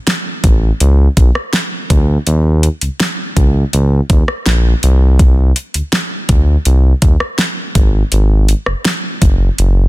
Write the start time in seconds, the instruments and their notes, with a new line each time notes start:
0.07 snare, closed hi-hat
0.44 analog synth bass A1, kick, closed hi-hat
0.80 analog synth bass C#2, closed hi-hat
1.17 analog synth bass B1, kick, closed hi-hat
1.35 cross-stick
1.53 snare, closed hi-hat
1.90 analog synth bass D2, kick, closed hi-hat
2.27 analog synth bass D#2, closed hi-hat
2.63 closed hi-hat
2.81 analog synth bass C#2, closed hi-hat
3.00 snare, closed hi-hat
3.37 analog synth bass C#2, kick, closed hi-hat
3.73 analog synth bass C#2, closed hi-hat
4.10 analog synth bass D#2, kick, closed hi-hat
4.28 cross-stick
4.46 analog synth bass A#1, snare, closed hi-hat
4.83 analog synth bass C2, closed hi-hat
5.19 kick, closed hi-hat
5.56 closed hi-hat
5.74 analog synth bass D2, closed hi-hat
5.92 snare, closed hi-hat
6.29 analog synth bass D2, kick, closed hi-hat
6.65 analog synth bass C2, closed hi-hat
7.02 analog synth bass D#2, kick, closed hi-hat
7.20 cross-stick
7.38 snare, closed hi-hat
7.75 analog synth bass G#1, kick, closed hi-hat
8.12 analog synth bass G#1, closed hi-hat
8.49 closed hi-hat
8.66 analog synth bass F#1, cross-stick
8.85 snare, closed hi-hat
9.22 analog synth bass F#1, kick, closed hi-hat
9.58 analog synth bass F#1, closed hi-hat